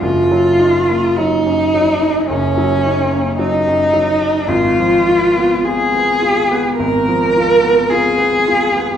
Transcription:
X:1
M:4/4
L:1/16
Q:1/4=53
K:Ebm
V:1 name="Cello"
F4 E4 D4 E4 | F4 A4 B4 A4 |]
V:2 name="Grand piano"
G,,, G, E B, G, G,, G, E G,,, G, E B, G, G,, G, E | A,,, F, F C F C F C A,,, F, F C F C F C |]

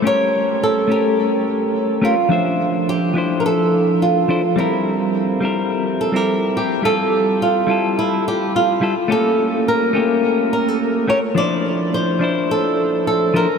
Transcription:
X:1
M:4/4
L:1/16
Q:"Swing 16ths" 1/4=106
K:F
V:1 name="Nylon-string guitar"
^c4 A2 G6 z2 F2- | F4 G3- G/2 B/2 A4 F4 | E8- E2 A G3 G2 | A4 F4 E2 G2 F4 |
A4 B6 B A3 ^c2 | d4 c4 A4 A2 B2 |]
V:2 name="Clean electric guitar"
[A,^CGB]6 [A,CGB]8 [A,CGB] z | [F,Dce]6 [F,DEc]8 [F,DEc] z | [G,CEB]6 [G,CEB]4- [G,CEB] [G,CEB]4- [G,CEB] | [G,EFA]6 [G,EFA]8 [G,EFA] z |
[A,B,^CG]6 [A,B,CG]8 [A,CGB] z | [F,DEc]6 [F,DEc]8 [F,DEc] z |]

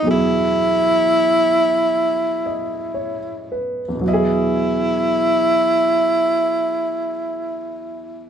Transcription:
X:1
M:4/4
L:1/16
Q:"Swing" 1/4=56
K:E
V:1 name="Grand piano"
z8 z2 d2 c2 B2- | B z12 z3 |]
V:2 name="Grand piano" clef=bass
[E,,B,,F,EG]16 | [E,,B,,F,Gd]16 |]
V:3 name="Tenor saxophone"
E12- E2 z2 | E16 |]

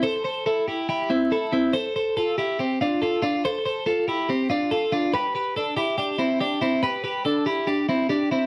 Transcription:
X:1
M:4/4
L:1/8
Q:1/4=142
K:Flyd
V:1 name="Clean electric guitar"
[Ac] [Ac] [EA] [EG] [EG] [CE] [EA] [CE] | [Ac] [Ac] [FA] [EG] [CG] [DF] [FA] [DF] | [Ac] [Ac] [FA] [EG] [CG] [DF] [FA] [DF] | [GB] [GB] [DA] [EG] [DG] [CE] [DG] [CE] |
[GB] [GB] [DA] [EG] [DG] [CE] [DG] [CE] |]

